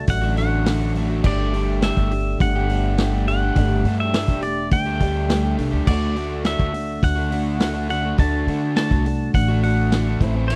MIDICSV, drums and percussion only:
0, 0, Header, 1, 2, 480
1, 0, Start_track
1, 0, Tempo, 578592
1, 1033, Time_signature, 4, 2, 24, 8
1, 8756, End_track
2, 0, Start_track
2, 0, Title_t, "Drums"
2, 61, Note_on_c, 9, 46, 89
2, 66, Note_on_c, 9, 36, 123
2, 144, Note_off_c, 9, 46, 0
2, 149, Note_off_c, 9, 36, 0
2, 307, Note_on_c, 9, 46, 62
2, 390, Note_off_c, 9, 46, 0
2, 550, Note_on_c, 9, 38, 109
2, 550, Note_on_c, 9, 46, 85
2, 632, Note_off_c, 9, 38, 0
2, 632, Note_off_c, 9, 46, 0
2, 790, Note_on_c, 9, 46, 54
2, 873, Note_off_c, 9, 46, 0
2, 1028, Note_on_c, 9, 49, 95
2, 1029, Note_on_c, 9, 36, 109
2, 1111, Note_off_c, 9, 49, 0
2, 1112, Note_off_c, 9, 36, 0
2, 1274, Note_on_c, 9, 46, 56
2, 1357, Note_off_c, 9, 46, 0
2, 1512, Note_on_c, 9, 38, 118
2, 1512, Note_on_c, 9, 46, 82
2, 1595, Note_off_c, 9, 38, 0
2, 1595, Note_off_c, 9, 46, 0
2, 1634, Note_on_c, 9, 36, 89
2, 1717, Note_off_c, 9, 36, 0
2, 1754, Note_on_c, 9, 46, 57
2, 1837, Note_off_c, 9, 46, 0
2, 1994, Note_on_c, 9, 36, 118
2, 1996, Note_on_c, 9, 46, 78
2, 2077, Note_off_c, 9, 36, 0
2, 2079, Note_off_c, 9, 46, 0
2, 2235, Note_on_c, 9, 46, 58
2, 2318, Note_off_c, 9, 46, 0
2, 2474, Note_on_c, 9, 38, 106
2, 2474, Note_on_c, 9, 46, 78
2, 2557, Note_off_c, 9, 38, 0
2, 2557, Note_off_c, 9, 46, 0
2, 2720, Note_on_c, 9, 46, 55
2, 2803, Note_off_c, 9, 46, 0
2, 2954, Note_on_c, 9, 46, 81
2, 2955, Note_on_c, 9, 36, 105
2, 3037, Note_off_c, 9, 46, 0
2, 3038, Note_off_c, 9, 36, 0
2, 3194, Note_on_c, 9, 46, 51
2, 3277, Note_off_c, 9, 46, 0
2, 3435, Note_on_c, 9, 38, 112
2, 3435, Note_on_c, 9, 46, 83
2, 3518, Note_off_c, 9, 38, 0
2, 3518, Note_off_c, 9, 46, 0
2, 3552, Note_on_c, 9, 36, 87
2, 3635, Note_off_c, 9, 36, 0
2, 3669, Note_on_c, 9, 46, 60
2, 3752, Note_off_c, 9, 46, 0
2, 3910, Note_on_c, 9, 46, 85
2, 3912, Note_on_c, 9, 36, 109
2, 3993, Note_off_c, 9, 46, 0
2, 3995, Note_off_c, 9, 36, 0
2, 4150, Note_on_c, 9, 46, 59
2, 4152, Note_on_c, 9, 36, 79
2, 4233, Note_off_c, 9, 46, 0
2, 4235, Note_off_c, 9, 36, 0
2, 4395, Note_on_c, 9, 38, 115
2, 4395, Note_on_c, 9, 46, 83
2, 4478, Note_off_c, 9, 38, 0
2, 4478, Note_off_c, 9, 46, 0
2, 4633, Note_on_c, 9, 46, 58
2, 4716, Note_off_c, 9, 46, 0
2, 4871, Note_on_c, 9, 36, 116
2, 4871, Note_on_c, 9, 49, 106
2, 4954, Note_off_c, 9, 36, 0
2, 4954, Note_off_c, 9, 49, 0
2, 5112, Note_on_c, 9, 46, 54
2, 5195, Note_off_c, 9, 46, 0
2, 5349, Note_on_c, 9, 38, 110
2, 5349, Note_on_c, 9, 46, 78
2, 5432, Note_off_c, 9, 38, 0
2, 5432, Note_off_c, 9, 46, 0
2, 5470, Note_on_c, 9, 36, 86
2, 5553, Note_off_c, 9, 36, 0
2, 5592, Note_on_c, 9, 46, 61
2, 5675, Note_off_c, 9, 46, 0
2, 5831, Note_on_c, 9, 36, 112
2, 5831, Note_on_c, 9, 46, 86
2, 5913, Note_off_c, 9, 36, 0
2, 5914, Note_off_c, 9, 46, 0
2, 6072, Note_on_c, 9, 46, 61
2, 6155, Note_off_c, 9, 46, 0
2, 6308, Note_on_c, 9, 38, 110
2, 6308, Note_on_c, 9, 46, 76
2, 6391, Note_off_c, 9, 38, 0
2, 6391, Note_off_c, 9, 46, 0
2, 6552, Note_on_c, 9, 46, 57
2, 6635, Note_off_c, 9, 46, 0
2, 6791, Note_on_c, 9, 36, 111
2, 6795, Note_on_c, 9, 46, 79
2, 6874, Note_off_c, 9, 36, 0
2, 6878, Note_off_c, 9, 46, 0
2, 7035, Note_on_c, 9, 46, 57
2, 7118, Note_off_c, 9, 46, 0
2, 7271, Note_on_c, 9, 38, 111
2, 7271, Note_on_c, 9, 46, 80
2, 7354, Note_off_c, 9, 38, 0
2, 7354, Note_off_c, 9, 46, 0
2, 7391, Note_on_c, 9, 36, 78
2, 7474, Note_off_c, 9, 36, 0
2, 7515, Note_on_c, 9, 46, 61
2, 7598, Note_off_c, 9, 46, 0
2, 7750, Note_on_c, 9, 36, 112
2, 7754, Note_on_c, 9, 46, 85
2, 7833, Note_off_c, 9, 36, 0
2, 7836, Note_off_c, 9, 46, 0
2, 7992, Note_on_c, 9, 46, 60
2, 8075, Note_off_c, 9, 46, 0
2, 8231, Note_on_c, 9, 38, 112
2, 8231, Note_on_c, 9, 46, 85
2, 8314, Note_off_c, 9, 38, 0
2, 8314, Note_off_c, 9, 46, 0
2, 8468, Note_on_c, 9, 36, 101
2, 8468, Note_on_c, 9, 46, 56
2, 8551, Note_off_c, 9, 36, 0
2, 8551, Note_off_c, 9, 46, 0
2, 8710, Note_on_c, 9, 49, 97
2, 8756, Note_off_c, 9, 49, 0
2, 8756, End_track
0, 0, End_of_file